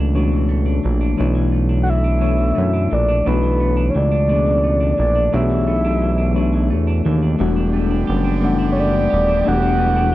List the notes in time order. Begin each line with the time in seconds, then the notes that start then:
Already playing: C#2 B2 E3 A3 D4 F#4 C#5
0.00 D4
0.13 B2 E3 A3 D4 F#4 C#5
0.32 E3
0.49 A3
0.66 D4
0.84 A#1 E3
1.01 D4
1.17 B1 B2 E3 A3 D4 C#5
1.21 E4
1.35 E3
1.52 A3
1.69 D4
1.83 E3 F#5
1.89 E5
2.04 D4
2.21 B2 E3 A3 D4 A4 C#5
2.38 E3
2.55 F#2 A3
2.73 D4
2.91 A#1 E3 D5
3.08 D4
3.24 B1 B2 E3 A3 D4 E4 B4 C#5
3.34 F#4
3.43 E3
3.60 A3
3.77 D4
3.90 C#5
3.95 C#2 E3 D5
4.11 D4
4.27 B2 E3 A3 B3 D4 G#4
4.46 E3
4.64 A3
4.80 D4
4.98 A#1 E3 D5
5.15 D4
5.31 B1 B2 E3 A3 D4 G4 C#5
5.35 E5
5.41 G#4
5.50 E3
5.67 A3
5.85 D4
6.02 E3
6.18 D4
6.34 B2 E3 A3 D4 F#4 C#5
6.53 E3
6.70 E2 A3
6.87 D4
7.05 D#2 E3
7.22 D4
7.37 E1 D3 E3 G3 A3 B3 D4 G4
7.41 F#4
7.56 D4
7.73 A3
7.91 D4
8.07 F#1 G4
8.24 D4
8.41 E3 G3 A3 B3 D4 F#5
8.58 D4
8.72 C#5
8.76 A3 D5
8.93 D4
9.10 D#1 G4
9.28 D4
9.44 E1 E3 G3 A3 B3 D4 F#4 F#5
9.54 G4
9.62 D4
9.78 A3
9.96 D4